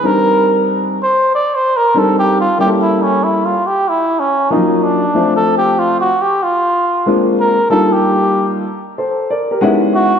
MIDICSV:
0, 0, Header, 1, 3, 480
1, 0, Start_track
1, 0, Tempo, 638298
1, 29, Time_signature, 4, 2, 24, 8
1, 7667, End_track
2, 0, Start_track
2, 0, Title_t, "Muted trumpet"
2, 0, Program_c, 0, 59
2, 43, Note_on_c, 0, 70, 99
2, 516, Note_off_c, 0, 70, 0
2, 774, Note_on_c, 0, 72, 96
2, 985, Note_off_c, 0, 72, 0
2, 1012, Note_on_c, 0, 74, 102
2, 1165, Note_on_c, 0, 72, 102
2, 1177, Note_off_c, 0, 74, 0
2, 1327, Note_on_c, 0, 70, 101
2, 1339, Note_off_c, 0, 72, 0
2, 1490, Note_on_c, 0, 69, 92
2, 1501, Note_off_c, 0, 70, 0
2, 1639, Note_off_c, 0, 69, 0
2, 1648, Note_on_c, 0, 67, 99
2, 1788, Note_off_c, 0, 67, 0
2, 1806, Note_on_c, 0, 65, 96
2, 1947, Note_off_c, 0, 65, 0
2, 1959, Note_on_c, 0, 67, 96
2, 2028, Note_off_c, 0, 67, 0
2, 2121, Note_on_c, 0, 64, 90
2, 2273, Note_on_c, 0, 61, 96
2, 2284, Note_off_c, 0, 64, 0
2, 2432, Note_on_c, 0, 64, 88
2, 2443, Note_off_c, 0, 61, 0
2, 2595, Note_on_c, 0, 65, 83
2, 2606, Note_off_c, 0, 64, 0
2, 2755, Note_on_c, 0, 67, 92
2, 2767, Note_off_c, 0, 65, 0
2, 2921, Note_on_c, 0, 64, 98
2, 2933, Note_off_c, 0, 67, 0
2, 3154, Note_on_c, 0, 61, 90
2, 3165, Note_off_c, 0, 64, 0
2, 3395, Note_on_c, 0, 63, 78
2, 3406, Note_off_c, 0, 61, 0
2, 3636, Note_on_c, 0, 62, 92
2, 3647, Note_off_c, 0, 63, 0
2, 4026, Note_off_c, 0, 62, 0
2, 4030, Note_on_c, 0, 69, 93
2, 4178, Note_off_c, 0, 69, 0
2, 4193, Note_on_c, 0, 67, 90
2, 4352, Note_on_c, 0, 65, 89
2, 4363, Note_off_c, 0, 67, 0
2, 4510, Note_off_c, 0, 65, 0
2, 4516, Note_on_c, 0, 66, 94
2, 4675, Note_on_c, 0, 67, 84
2, 4686, Note_off_c, 0, 66, 0
2, 4833, Note_on_c, 0, 65, 97
2, 4844, Note_off_c, 0, 67, 0
2, 5359, Note_off_c, 0, 65, 0
2, 5565, Note_on_c, 0, 70, 88
2, 5781, Note_off_c, 0, 70, 0
2, 5792, Note_on_c, 0, 69, 88
2, 5957, Note_on_c, 0, 67, 92
2, 5969, Note_off_c, 0, 69, 0
2, 6433, Note_off_c, 0, 67, 0
2, 7478, Note_on_c, 0, 66, 100
2, 7667, Note_off_c, 0, 66, 0
2, 7667, End_track
3, 0, Start_track
3, 0, Title_t, "Grand piano"
3, 0, Program_c, 1, 0
3, 25, Note_on_c, 1, 55, 66
3, 26, Note_on_c, 1, 60, 69
3, 29, Note_on_c, 1, 62, 68
3, 36, Note_on_c, 1, 63, 68
3, 40, Note_on_c, 1, 70, 81
3, 716, Note_off_c, 1, 55, 0
3, 716, Note_off_c, 1, 60, 0
3, 718, Note_off_c, 1, 62, 0
3, 721, Note_off_c, 1, 63, 0
3, 723, Note_off_c, 1, 70, 0
3, 1462, Note_on_c, 1, 60, 66
3, 1463, Note_on_c, 1, 55, 70
3, 1466, Note_on_c, 1, 62, 61
3, 1474, Note_on_c, 1, 63, 67
3, 1475, Note_on_c, 1, 70, 71
3, 1833, Note_off_c, 1, 60, 0
3, 1834, Note_off_c, 1, 55, 0
3, 1835, Note_off_c, 1, 62, 0
3, 1839, Note_off_c, 1, 63, 0
3, 1840, Note_off_c, 1, 70, 0
3, 1941, Note_on_c, 1, 55, 77
3, 1944, Note_on_c, 1, 58, 61
3, 1952, Note_on_c, 1, 61, 63
3, 1952, Note_on_c, 1, 64, 73
3, 1955, Note_on_c, 1, 67, 60
3, 2005, Note_on_c, 1, 69, 78
3, 2016, Note_off_c, 1, 67, 0
3, 2634, Note_off_c, 1, 55, 0
3, 2635, Note_off_c, 1, 58, 0
3, 2639, Note_off_c, 1, 61, 0
3, 2639, Note_off_c, 1, 64, 0
3, 2666, Note_off_c, 1, 69, 0
3, 3386, Note_on_c, 1, 53, 59
3, 3386, Note_on_c, 1, 58, 65
3, 3392, Note_on_c, 1, 61, 66
3, 3397, Note_on_c, 1, 63, 65
3, 3399, Note_on_c, 1, 65, 89
3, 3430, Note_on_c, 1, 54, 75
3, 3451, Note_off_c, 1, 53, 0
3, 3755, Note_off_c, 1, 58, 0
3, 3758, Note_off_c, 1, 61, 0
3, 3761, Note_off_c, 1, 63, 0
3, 3762, Note_off_c, 1, 65, 0
3, 3778, Note_off_c, 1, 54, 0
3, 3867, Note_on_c, 1, 53, 73
3, 3870, Note_on_c, 1, 57, 69
3, 3876, Note_on_c, 1, 60, 64
3, 3878, Note_on_c, 1, 62, 67
3, 3885, Note_on_c, 1, 65, 74
3, 4557, Note_off_c, 1, 53, 0
3, 4558, Note_off_c, 1, 57, 0
3, 4562, Note_off_c, 1, 60, 0
3, 4562, Note_off_c, 1, 62, 0
3, 4566, Note_off_c, 1, 65, 0
3, 5309, Note_on_c, 1, 56, 74
3, 5314, Note_on_c, 1, 58, 67
3, 5317, Note_on_c, 1, 60, 65
3, 5321, Note_on_c, 1, 62, 66
3, 5324, Note_on_c, 1, 65, 83
3, 5677, Note_off_c, 1, 56, 0
3, 5679, Note_off_c, 1, 58, 0
3, 5681, Note_off_c, 1, 60, 0
3, 5683, Note_off_c, 1, 62, 0
3, 5684, Note_off_c, 1, 65, 0
3, 5787, Note_on_c, 1, 58, 61
3, 5788, Note_on_c, 1, 55, 77
3, 5795, Note_on_c, 1, 62, 65
3, 5798, Note_on_c, 1, 63, 73
3, 5802, Note_on_c, 1, 65, 88
3, 6477, Note_off_c, 1, 58, 0
3, 6478, Note_off_c, 1, 55, 0
3, 6481, Note_off_c, 1, 62, 0
3, 6483, Note_off_c, 1, 63, 0
3, 6484, Note_off_c, 1, 65, 0
3, 6755, Note_on_c, 1, 69, 56
3, 6755, Note_on_c, 1, 72, 68
3, 6980, Note_off_c, 1, 69, 0
3, 6980, Note_off_c, 1, 72, 0
3, 6997, Note_on_c, 1, 74, 75
3, 7001, Note_on_c, 1, 70, 55
3, 7141, Note_off_c, 1, 70, 0
3, 7143, Note_off_c, 1, 74, 0
3, 7152, Note_on_c, 1, 70, 66
3, 7156, Note_on_c, 1, 67, 58
3, 7227, Note_on_c, 1, 56, 96
3, 7231, Note_on_c, 1, 59, 79
3, 7234, Note_on_c, 1, 61, 81
3, 7235, Note_on_c, 1, 78, 77
3, 7239, Note_on_c, 1, 63, 79
3, 7243, Note_on_c, 1, 64, 98
3, 7377, Note_off_c, 1, 70, 0
3, 7379, Note_off_c, 1, 67, 0
3, 7455, Note_off_c, 1, 78, 0
3, 7477, Note_on_c, 1, 76, 69
3, 7596, Note_off_c, 1, 56, 0
3, 7598, Note_off_c, 1, 59, 0
3, 7599, Note_off_c, 1, 61, 0
3, 7602, Note_off_c, 1, 63, 0
3, 7604, Note_off_c, 1, 64, 0
3, 7667, Note_off_c, 1, 76, 0
3, 7667, End_track
0, 0, End_of_file